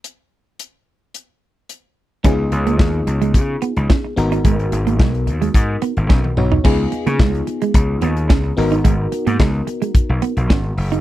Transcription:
<<
  \new Staff \with { instrumentName = "FM electric piano" } { \time 4/4 \key des \mixolydian \tempo 4 = 109 r1 | <ces' ees' f' aes'>2.~ <ces' ees' f' aes'>8 <ces' ees' ges' bes'>8~ | <ces' ees' ges' bes'>2.~ <ces' ees' ges' bes'>8 <ces' ees' ges' des''>8 | <ces' ees' f' aes'>2.~ <ces' ees' f' aes'>8 <ces' ees' ges' bes'>8~ |
<ces' ees' ges' bes'>2.~ <ces' ees' ges' bes'>8 r8 | }
  \new Staff \with { instrumentName = "Clean electric guitar" } { \time 4/4 \key des \mixolydian r1 | des'16 r8 bes16 aes16 r8 aes16 r8 ces'16 r16 des'16 r8 ees'16 | aes16 r8 bes16 aes16 r8 aes16 r8 ces'16 r16 des'16 r8 ees'16 | des'16 r8 bes16 aes16 r8 aes16 r8 ces'16 r16 des'16 r8 ees'16 |
aes16 r8 bes16 aes16 r8 aes16 r8 ces'16 r16 des'16 r8 ees'16 | }
  \new Staff \with { instrumentName = "Slap bass" } { \clef bass \time 4/4 \key des \mixolydian r1 | des,8 des,8 ees,8 des,8 des8 r16 des,16 r8 aes,,8 | aes,,8 aes,,8 ces,8 ees,8 aes,8 r16 aes,,16 ces,8 ces,8 | des,8 r16 des16 des,8 r8 des,8 ees,8 des,8 aes,,8 |
aes,,8 r16 aes,16 des,8 r8. ces,16 r16 ces,16 aes,,8 ges,,8 | }
  \new DrumStaff \with { instrumentName = "Drums" } \drummode { \time 4/4 hh4 hh4 hh4 hh4 | <hh bd>8 hh16 hh16 <bd sn>8 hh16 hh16 <hh bd>8 hh16 hh16 <bd sn>8 hh16 hh16 | <hh bd>16 hh16 hh16 hh16 <bd sn>16 hh16 hh16 hh16 <hh bd>8 hh16 hh16 <bd sn>16 tommh16 toml16 tomfh16 | <cymc bd>8 hh16 hh16 <bd sn>16 hh16 hh16 hh16 <hh bd>8 hh16 hh16 <bd sn>8 hho16 hh16 |
<hh bd>8 hh16 hh16 <bd sn>8 hh16 hh16 <hh bd>8 hh16 hh16 <bd sn>8 hho16 hh16 | }
>>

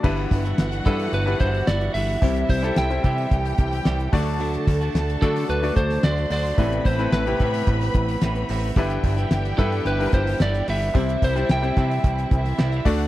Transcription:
<<
  \new Staff \with { instrumentName = "Violin section" } { \time 4/4 \key g \major \tempo 4 = 110 <fis' fis''>1 | <e' e''>2 <g' g''>4. <a' a''>8~ | <a' a''>2. <c'' c'''>4 | <b' b''>1 |
<g' g''>1 | <e' e''>2~ <e' e''>8 <e' e''>4 <fis' fis''>8 | }
  \new Staff \with { instrumentName = "Lead electric guitar" } { \time 4/4 \key g \major r4. a'8 b'8 c''8 d''8 e''8~ | e''8 c''8 g''2~ g''8 r8 | r4. a'8 b'8 c''8 d''8 d''8~ | d''8 c''8 b'2~ b'8 r8 |
r4. a'8 b'8 c''8 d''8 e''8~ | e''8 c''8 g''2~ g''8 r8 | }
  \new Staff \with { instrumentName = "Grand piano" } { \time 4/4 \key g \major <g d' e' b'>4. <g d' e' b'>8. <g d' e' b'>4. r16 | <g c' e' c''>8. <g c' e' a'>8 <g c' e' c''>4.~ <g c' e' c''>16 r8 <a d' fis' d''>8~ | <a d' fis' d''>4~ <a d' fis' d''>16 r16 <a d' fis' d''>8. <a d' fis' d''>4. r16 | <c a e' b'>8. <a c' e' b'>8 <c a e' g'>4.~ <c a e' g'>16 r4 |
<g d' e' b'>4. <g d' e' b'>8. <g d' e' bes' b'>4. r16 | <g c' e' c''>8. <g c' e' c''>8 <g c' e' c''>4.~ <g c' e' c''>16 r8 <a d' fis' d''>8 | }
  \new Staff \with { instrumentName = "Grand piano" } { \clef bass \time 4/4 \key g \major g,4. r2 r8 | c4. r2 d8~ | d4 r2. | a,4. r2 r8 |
g,4. r2 r8 | c4. r2 d8 | }
  \new Staff \with { instrumentName = "Clean electric guitar" } { \time 4/4 \key g \major <g, d e g b e'>8. <e g b e'>8. <e g b e'>4. <e g b e'>8 <e g b e'>8 | <c e g e' g'>8. <g e' g'>8. <e g e' g'>4. <e g e' g'>8 <fis a d' fis'>8 | <d fis a d' fis'>8. <a d' fis'>8. <fis a d' fis'>4. <fis a d' fis'>8 <fis a d' fis'>8 | <a, e b c' e'>8. <b c' e'>8. <e b c' e'>4. <e b c' e'>8 <e b c' e'>8 |
<g, d e g b e'>8. <e g b e'>8. <e g b e'>4. <e g b e'>8 <e g b e'>8 | <c e g c' e'>8. <g c' e'>8. <e g c' e'>4. <e g c' e'>8 <d a d' fis'>8 | }
  \new Staff \with { instrumentName = "Analog synth bass" } { \clef bass \time 4/4 \key g \major g,,8 g,,8 g,,8 g,8 g,,8 g,,8 g,,8 g,,8 | c,8 c,8 c,8 c8 c,8 c,8 c,8 d,8~ | d,8 d,8 d,8 d8 d,8 d,8 d,8 d,8 | a,,8 a,,8 a,,8 a,8 a,,8 a,,8 a,,8 a,,8 |
g,,8 g,,8 g,,8 g,8 g,,8 g,,8 g,,8 g,,8 | c,8 c,8 c,8 c8 c,8 c,8 c,8 d,8 | }
  \new DrumStaff \with { instrumentName = "Drums" } \drummode { \time 4/4 <cymc bd>16 hho16 <hho hhp bd>16 <hho hhp>16 <hho hhp sn>16 <hho hhp>16 <hho hhp bd>16 <hho hhp>16 <hho hhp>16 hhp16 <hho hhp bd>16 hho16 <hho hhp sn>16 <hho hhp>16 <hho hhp>16 <hho hhp>16 | <hho hhp bd>16 <hho hhp>16 <hho hhp bd>16 <hho hhp>16 <hho hhp sn>16 hhp16 <hho hhp bd>16 hho16 <hho hhp bd>16 <hho hhp>16 <hho hhp bd>16 <hho hhp sn>16 <hho hhp sn>16 hhp16 <hho hhp bd>16 hho16 | <hho hhp>16 <hho hhp>16 <hho hhp bd>16 <hho hhp>16 <hho hhp sn>16 <hho hhp>16 <hho hhp bd>16 <hho hhp>16 <hho hhp>16 <hho hhp>16 <hho hhp bd>16 <hho hhp sn>16 <hho hhp sn>16 <hho hhp>16 <hho hhp>16 <hho hhp>16 | <hho hhp bd>16 <hho hhp>16 <hho hhp bd>16 <hho hhp>16 <hho hhp sn>16 <hho hhp>16 <hho hhp bd>16 <hho hhp>16 <hho hhp bd>16 <hho hhp>16 <hho hhp bd>16 <hho hhp>16 <hho hhp sn>16 <hho hhp>16 <hho hhp>16 <hho hhp>16 |
<hho hhp bd>16 <hho hhp>16 <hho hhp bd>16 <hho hhp>16 <hho hhp sn>16 hhp16 <hho hhp bd>16 hho16 <hho hhp>16 <hho hhp>16 <hho hhp bd>16 <hho hhp sn>16 <hho hhp sn>16 <hho hhp>16 <hho hhp>16 <hho hhp>16 | <hho hhp bd>16 <hho hhp>16 <hho hhp bd>16 <hho hhp>16 <hho hhp sn>16 hhp16 <hho hhp bd>16 hho16 <hho hhp bd>16 hhp16 <hho hhp bd>16 <hho sn>16 <hho hhp sn>16 <hho hhp>16 <hho hhp bd>16 <hho hhp>16 | }
>>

